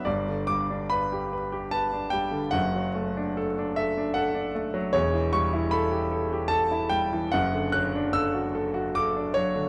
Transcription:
\new Staff \with { instrumentName = "Grand piano" } { \time 3/4 \key d \major \tempo 4 = 74 << { d''8 d'''8 b''4 a''8 g''8 | fis''4. e''8 fis''8 r8 | cis''8 cis'''8 b''4 a''8 g''8 | fis''8 fis'''8 e'''4 d'''8 cis''8 | } \\ { <g,, g,>16 d16 g16 d'16 b'16 g'16 b'16 g'16 b'16 d'16 g16 d16 | <fis,, fis,>16 fis16 a16 d'16 a'16 d'16 a'16 d'16 a'16 d'16 a16 fis16 | <e,, e,>16 e16 g16 e'16 a'16 g'16 a'16 g'16 a'16 e'16 g16 e16 | <fis,, fis,>16 d16 fis16 d'16 a'16 fis'16 a'16 fis'16 a'16 d'16 fis16 d16 | } >> }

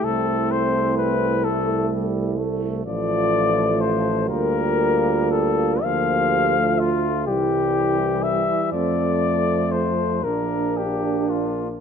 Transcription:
<<
  \new Staff \with { instrumentName = "Flugelhorn" } { \time 6/8 \key a \minor \tempo 4. = 41 a'8 c''8 b'8 a'8 r4 | \key f \major d''4 c''8 bes'4 a'8 | f''4 f'8 g'4 e''8 | d''4 c''8 bes'8 g'8 f'8 | }
  \new Staff \with { instrumentName = "French horn section" } { \time 6/8 \key a \minor e'2. | \key f \major f'4. f'4. | g'8. f'8. e'4. | c'4. d'4. | }
  \new Staff \with { instrumentName = "Euphonium" } { \time 6/8 \key a \minor a2. | \key f \major a4. bes4. | bes8. a8. g4. | a4. bes4. | }
  \new Staff \with { instrumentName = "Trombone" } { \clef bass \time 6/8 \key a \minor c'4. a8 g8 a8 | \key f \major f4. g4. | f4 r8 e4. | f4. d'4. | }
  \new Staff \with { instrumentName = "Tuba" } { \clef bass \time 6/8 \key a \minor c,2. | \key f \major a,,4. d,4. | d,4. c,4. | f,4. bes,,4. | }
>>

